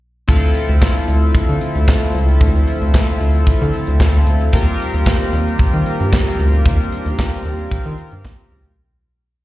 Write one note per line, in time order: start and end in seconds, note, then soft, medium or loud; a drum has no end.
0.28 0.50 D2 medium
0.28 4.49 D3 medium
0.28 4.49 F3 medium
0.28 4.49 A3 medium
0.28 4.49 C4 medium
0.28 6.62 C4 medium
0.28 4.49 E4 medium
0.28 4.49 F4 medium
0.28 4.49 A4 medium
0.28 4.49 E5 medium
0.28 kick loud
0.28 closed hi-hat medium
0.55 closed hi-hat medium
0.69 0.79 D2 medium
0.69 closed hi-hat medium
0.82 kick loud
0.82 snare loud
0.82 clap medium
0.95 closed hi-hat soft
1.08 1.30 D2 medium
1.08 closed hi-hat medium
1.22 closed hi-hat soft
1.35 1.40 D3 soft
1.35 kick loud
1.35 closed hi-hat medium
1.49 1.59 D3 medium
1.49 closed hi-hat soft
1.61 closed hi-hat medium
1.75 1.85 D2 medium
1.75 closed hi-hat medium
1.88 kick loud
1.88 snare loud
1.88 clap medium
2.02 closed hi-hat soft
2.14 2.36 C#2 medium
2.14 closed hi-hat medium
2.29 closed hi-hat medium
2.41 2.62 D2 loud
2.41 kick loud
2.41 closed hi-hat medium
2.55 closed hi-hat soft
2.68 closed hi-hat medium
2.81 2.92 D2 medium
2.81 closed hi-hat medium
2.94 kick loud
2.94 snare loud
2.94 clap medium
3.21 3.42 D2 medium
3.21 closed hi-hat medium
3.35 closed hi-hat soft
3.47 3.53 D3 soft
3.47 kick loud
3.47 closed hi-hat medium
3.62 3.72 D3 medium
3.73 closed hi-hat medium
3.87 3.98 D2 medium
3.87 closed hi-hat medium
4.00 4.22 D2 loud
4.00 kick loud
4.00 snare loud
4.00 clap medium
4.27 4.48 D2 medium
4.27 closed hi-hat medium
4.41 closed hi-hat soft
4.52 4.75 D#2 loud
4.52 8.74 D#3 medium
4.52 8.74 G3 medium
4.52 8.74 A#3 medium
4.52 8.73 C4 medium
4.52 8.74 F4 medium
4.52 8.73 G4 medium
4.52 8.74 G4 medium
4.52 8.74 A#4 medium
4.52 kick loud
4.52 closed hi-hat medium
4.68 closed hi-hat soft
4.80 closed hi-hat medium
4.94 5.04 D#2 medium
4.94 closed hi-hat medium
5.06 kick loud
5.06 snare loud
5.06 clap medium
5.20 closed hi-hat soft
5.33 5.54 D#2 medium
5.33 closed hi-hat medium
5.47 closed hi-hat soft
5.59 5.65 D#3 soft
5.59 kick loud
5.59 closed hi-hat medium
5.74 5.84 D#3 medium
5.86 closed hi-hat medium
6.00 6.10 G2 medium
6.00 closed hi-hat medium
6.13 kick loud
6.13 snare loud
6.13 clap medium
6.39 6.61 D2 medium
6.39 closed hi-hat medium
6.53 closed hi-hat soft
6.65 6.87 D#2 medium
6.65 8.75 D4 medium
6.65 kick loud
6.65 closed hi-hat medium
6.80 closed hi-hat soft
6.92 closed hi-hat medium
7.06 7.16 D#2 loud
7.06 closed hi-hat soft
7.19 kick loud
7.19 snare loud
7.19 clap medium
7.32 closed hi-hat soft
7.45 7.67 D#2 medium
7.45 closed hi-hat medium
7.59 closed hi-hat soft
7.71 7.77 D#3 soft
7.71 kick loud
7.71 closed hi-hat medium
7.86 7.96 D#3 loud
7.98 closed hi-hat medium
8.12 8.23 G2 medium
8.12 closed hi-hat medium
8.25 8.36 A#1 loud
8.25 kick loud
8.25 snare loud
8.25 clap medium
8.39 closed hi-hat soft
8.51 8.63 C#2 loud
8.51 open hi-hat medium
8.65 8.76 D2 medium
8.65 closed hi-hat soft